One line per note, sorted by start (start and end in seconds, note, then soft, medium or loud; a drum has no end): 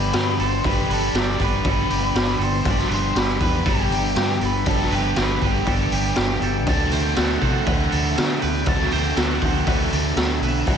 0.00 0.10 G1 medium
0.00 0.63 G2 medium
0.00 0.62 D3 medium
0.00 0.63 G3 medium
0.00 0.64 G3 medium
0.00 0.64 B3 medium
0.00 0.65 B3 medium
0.00 0.64 D4 medium
0.00 0.66 D4 medium
0.00 0.15 G4 medium
0.00 0.65 G4 medium
0.00 0.66 G4 medium
0.00 0.41 B4 medium
0.13 0.35 G2 medium
0.13 0.39 G4 medium
0.13 snare loud
0.13 open hi-hat medium
0.38 0.60 G1 medium
0.38 0.64 A4 medium
0.38 0.66 C5 medium
0.38 open hi-hat medium
0.63 0.86 G1 medium
0.63 1.42 G2 medium
0.63 1.38 D3 medium
0.63 1.41 G3 medium
0.63 1.40 B3 medium
0.63 1.40 D4 medium
0.63 1.40 G4 medium
0.63 0.91 B4 medium
0.63 kick loud
0.63 open hi-hat medium
0.88 1.10 G1 medium
0.88 1.42 B4 medium
0.88 open hi-hat medium
0.93 1.17 A4 medium
1.13 1.35 G1 medium
1.13 1.68 G4 medium
1.13 snare loud
1.13 open hi-hat medium
1.18 1.42 D5 medium
1.40 1.62 G1 medium
1.40 2.65 G2 medium
1.40 2.64 D3 medium
1.40 2.66 G3 medium
1.40 2.66 B3 medium
1.40 2.66 D4 medium
1.40 2.67 G4 medium
1.40 1.68 B4 medium
1.40 kick medium
1.40 open hi-hat medium
1.44 2.44 B4 medium
1.64 1.87 G1 loud
1.64 2.63 G3 medium
1.64 2.65 B3 medium
1.64 2.65 D4 medium
1.64 2.67 G4 medium
1.64 1.90 A4 medium
1.64 kick loud
1.64 open hi-hat medium
1.90 2.12 G1 medium
1.90 2.15 G4 medium
1.90 open hi-hat medium
2.14 2.36 G1 medium
2.14 2.42 G4 medium
2.14 snare loud
2.14 open hi-hat medium
2.38 2.61 G1 medium
2.38 2.65 A4 medium
2.38 open hi-hat medium
2.44 2.68 C5 medium
2.65 2.87 G1 medium
2.65 3.42 G2 medium
2.65 3.39 D3 medium
2.65 3.41 G3 medium
2.65 3.41 B3 medium
2.65 3.40 D4 medium
2.65 3.40 G4 loud
2.65 kick loud
2.65 open hi-hat medium
2.70 2.93 D5 loud
2.79 snare soft
2.89 3.12 G1 medium
2.89 3.41 B4 medium
2.89 3.18 C5 medium
2.89 open hi-hat medium
3.15 3.37 G1 medium
3.15 3.69 G4 medium
3.15 3.43 B4 loud
3.15 snare loud
3.15 open hi-hat medium
3.40 3.63 E2 medium
3.40 4.65 G2 medium
3.40 4.65 D3 medium
3.40 4.65 G3 medium
3.40 4.65 B3 medium
3.40 4.67 D4 medium
3.40 4.65 G4 medium
3.40 3.69 B4 medium
3.40 3.68 B4 medium
3.40 kick medium
3.40 open hi-hat medium
3.64 3.88 G1 medium
3.64 4.63 G3 medium
3.64 4.64 B3 medium
3.64 4.66 D4 medium
3.64 4.65 G4 medium
3.64 4.44 G4 medium
3.64 3.90 A4 medium
3.64 kick loud
3.64 open hi-hat medium
3.90 4.13 G1 medium
3.90 4.15 G4 medium
3.90 open hi-hat medium
4.15 4.38 G2 medium
4.15 4.41 G4 medium
4.15 snare loud
4.15 open hi-hat medium
4.40 4.63 G1 medium
4.40 4.67 A4 medium
4.40 open hi-hat medium
4.45 4.68 B4 medium
4.66 4.88 G1 medium
4.66 5.40 G2 medium
4.66 5.40 D3 medium
4.66 5.40 G3 medium
4.66 5.41 B3 medium
4.66 5.42 D4 medium
4.66 5.41 G4 medium
4.66 4.93 A4 medium
4.66 kick loud
4.66 open hi-hat medium
4.80 snare soft
4.90 5.13 G1 medium
4.90 5.17 B4 medium
4.90 open hi-hat medium
4.95 5.19 G4 medium
5.16 5.38 G1 medium
5.16 5.43 G4 medium
5.16 snare loud
5.16 open hi-hat medium
5.22 5.45 B4 medium
5.42 5.64 G1 medium
5.42 6.67 G2 medium
5.42 6.65 D3 medium
5.42 6.66 G3 medium
5.42 6.66 B3 medium
5.42 6.68 D4 medium
5.42 6.66 G4 medium
5.42 5.68 B4 medium
5.42 kick medium
5.42 open hi-hat medium
5.46 6.47 G4 medium
5.65 5.88 G1 medium
5.65 6.64 G3 medium
5.65 6.65 B3 medium
5.65 6.68 D4 medium
5.65 5.92 A4 medium
5.65 kick loud
5.65 open hi-hat medium
5.69 6.67 G4 medium
5.91 6.13 G1 medium
5.91 6.17 G4 medium
5.91 open hi-hat medium
6.16 6.38 G1 medium
6.16 6.42 G4 medium
6.16 snare loud
6.16 open hi-hat medium
6.41 6.66 G1 medium
6.41 6.67 A4 medium
6.41 open hi-hat medium
6.46 6.69 G5 medium
6.66 6.88 D2 loud
6.66 7.42 D3 medium
6.66 7.42 A3 medium
6.66 7.42 C4 medium
6.66 7.41 F#4 medium
6.66 6.92 A5 loud
6.66 kick loud
6.66 open hi-hat medium
6.91 7.14 D2 medium
6.91 7.42 C5 medium
6.91 7.17 G5 medium
6.91 open hi-hat medium
7.16 7.39 D2 medium
7.16 7.70 A4 medium
7.16 7.42 F#5 loud
7.16 snare loud
7.16 open hi-hat medium
7.41 7.63 C3 medium
7.41 8.65 D3 medium
7.41 8.65 A3 medium
7.41 8.67 C4 medium
7.41 8.65 F#4 medium
7.41 7.66 C5 medium
7.41 7.66 F#5 medium
7.41 kick medium
7.41 open hi-hat medium
7.66 7.88 D2 medium
7.66 8.65 D3 medium
7.66 8.65 A3 medium
7.66 8.68 C4 medium
7.66 8.66 F#4 medium
7.66 7.92 B4 medium
7.66 kick loud
7.66 open hi-hat medium
7.91 8.14 D2 medium
7.91 8.15 A4 medium
7.91 open hi-hat medium
8.16 8.39 D3 medium
8.16 8.41 A4 medium
8.16 snare loud
8.16 open hi-hat medium
8.40 8.64 D2 medium
8.40 8.67 B4 medium
8.40 8.67 G5 medium
8.40 open hi-hat medium
8.66 8.89 D2 medium
8.66 9.40 D3 medium
8.66 9.40 A3 medium
8.66 9.43 C4 medium
8.66 9.41 F#4 loud
8.66 8.93 A5 loud
8.66 kick loud
8.66 open hi-hat medium
8.79 snare soft
8.91 9.13 D2 medium
8.91 9.42 C5 medium
8.91 9.18 G5 medium
8.91 open hi-hat medium
9.16 9.38 D2 medium
9.16 9.41 A4 medium
9.16 9.44 F#5 medium
9.16 snare loud
9.16 open hi-hat medium
9.42 9.63 D2 medium
9.42 10.66 D3 medium
9.42 10.66 A3 medium
9.42 10.68 C4 medium
9.42 10.65 F#4 medium
9.42 9.67 C5 medium
9.42 kick medium
9.42 open hi-hat medium
9.46 9.67 F#5 medium
9.65 9.89 D2 loud
9.65 10.64 D3 medium
9.65 10.65 A3 medium
9.65 10.67 C4 medium
9.65 10.66 F#4 medium
9.65 9.92 B4 medium
9.65 kick loud
9.65 open hi-hat medium
9.92 10.13 D2 medium
9.92 10.16 A4 medium
9.92 open hi-hat medium
10.16 10.38 D2 medium
10.16 10.42 A4 medium
10.16 snare loud
10.16 open hi-hat medium
10.41 10.63 B1 medium
10.41 10.67 B4 medium
10.41 10.68 E5 medium
10.41 open hi-hat medium
10.67 10.77 C2 medium
10.67 10.77 C3 medium
10.67 10.77 E3 medium
10.67 10.77 G3 medium
10.67 10.77 C4 loud
10.67 10.77 E4 loud
10.67 10.77 F#5 loud
10.67 kick loud
10.67 open hi-hat medium